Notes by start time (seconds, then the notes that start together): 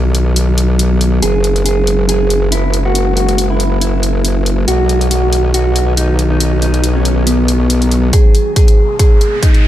Already playing: B1 D#3 F#3 B3
0.15 closed hi-hat
0.36 closed hi-hat
0.58 closed hi-hat
0.79 closed hi-hat
1.01 closed hi-hat
1.22 F#1 G#3 A#3 G#4, closed hi-hat
1.44 closed hi-hat
1.56 closed hi-hat
1.66 G#4, closed hi-hat
1.87 closed hi-hat
2.09 G#4, closed hi-hat
2.30 closed hi-hat
2.52 E4, closed hi-hat
2.74 closed hi-hat
2.85 F#4
2.95 closed hi-hat
3.17 F#4, closed hi-hat
3.29 closed hi-hat
3.38 closed hi-hat
3.50 E4
3.60 closed hi-hat
3.81 E4, closed hi-hat
4.03 closed hi-hat
4.25 closed hi-hat
4.46 closed hi-hat
4.68 B1 D#3 B3 F#4, closed hi-hat
4.89 closed hi-hat
5.01 closed hi-hat
5.11 F#4, closed hi-hat
5.33 closed hi-hat
5.54 F#4, closed hi-hat
5.76 closed hi-hat
5.97 D#4, closed hi-hat
6.19 closed hi-hat
6.31 D#4
6.40 closed hi-hat
6.62 D#4, closed hi-hat
6.74 closed hi-hat
6.84 closed hi-hat
6.95 C#4
7.05 closed hi-hat
7.27 B3, closed hi-hat
7.48 closed hi-hat
7.70 closed hi-hat
7.82 closed hi-hat
7.92 closed hi-hat
8.13 B2 G#3 A#3 G#4, kick, closed hi-hat, riser
8.35 closed hi-hat
8.56 G#4, kick, closed hi-hat
8.68 closed hi-hat
8.99 G#4, kick, closed hi-hat
9.21 closed hi-hat
9.43 D#4, kick, closed hi-hat
9.54 closed hi-hat